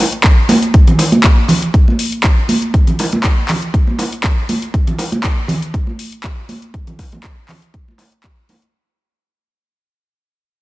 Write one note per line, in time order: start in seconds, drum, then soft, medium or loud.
0.12 closed hi-hat medium
0.24 kick loud
0.24 clap loud
0.24 closed hi-hat medium
0.49 open hi-hat loud
0.49 high bongo medium
0.49 high conga medium
0.62 closed hi-hat medium
0.74 kick loud
0.74 closed hi-hat medium
0.87 closed hi-hat medium
0.87 low conga medium
0.99 open hi-hat loud
0.99 high bongo medium
1.12 closed hi-hat medium
1.12 high conga medium
1.24 kick loud
1.24 clap loud
1.24 closed hi-hat medium
1.48 open hi-hat loud
1.48 low conga medium
1.62 closed hi-hat soft
1.74 kick loud
1.74 closed hi-hat medium
1.88 high conga medium
1.99 open hi-hat loud
2.12 closed hi-hat medium
2.24 kick loud
2.24 clap loud
2.24 closed hi-hat medium
2.49 open hi-hat loud
2.49 high conga medium
2.62 closed hi-hat soft
2.74 kick loud
2.74 closed hi-hat medium
2.87 closed hi-hat medium
2.87 low conga medium
2.99 open hi-hat loud
2.99 high bongo medium
3.12 closed hi-hat medium
3.12 high conga medium
3.24 kick loud
3.24 clap loud
3.24 closed hi-hat medium
3.49 clap medium
3.49 open hi-hat loud
3.49 low conga medium
3.62 closed hi-hat soft
3.74 kick loud
3.74 closed hi-hat medium
3.87 high conga medium
3.99 open hi-hat loud
3.99 high bongo medium
4.12 closed hi-hat medium
4.24 kick loud
4.24 clap loud
4.24 closed hi-hat medium
4.49 open hi-hat loud
4.49 high conga medium
4.62 closed hi-hat medium
4.74 kick loud
4.74 closed hi-hat medium
4.87 closed hi-hat medium
4.87 low conga medium
4.99 open hi-hat loud
4.99 high bongo medium
5.12 closed hi-hat medium
5.12 high conga medium
5.24 kick loud
5.24 clap loud
5.24 closed hi-hat medium
5.48 open hi-hat loud
5.48 low conga loud
5.62 closed hi-hat medium
5.74 kick loud
5.74 closed hi-hat medium
5.87 high conga medium
5.99 open hi-hat loud
6.12 closed hi-hat medium
6.24 kick loud
6.24 clap loud
6.24 closed hi-hat medium
6.49 open hi-hat loud
6.49 high conga medium
6.62 closed hi-hat medium
6.74 kick loud
6.74 closed hi-hat medium
6.87 closed hi-hat medium
6.87 low conga medium
6.99 kick medium
6.99 open hi-hat loud
6.99 high bongo medium
7.12 closed hi-hat medium
7.12 high conga medium
7.12 low conga medium
7.24 kick loud
7.24 clap loud
7.24 closed hi-hat medium
7.49 clap medium
7.49 open hi-hat loud
7.49 low conga loud
7.62 closed hi-hat medium
7.74 kick loud
7.74 closed hi-hat medium
7.88 high conga medium
7.98 open hi-hat loud
7.98 high bongo medium
8.12 closed hi-hat medium
8.24 kick loud
8.24 clap loud
8.24 closed hi-hat medium
8.49 open hi-hat loud
8.49 high bongo medium
8.49 high conga medium
8.62 closed hi-hat medium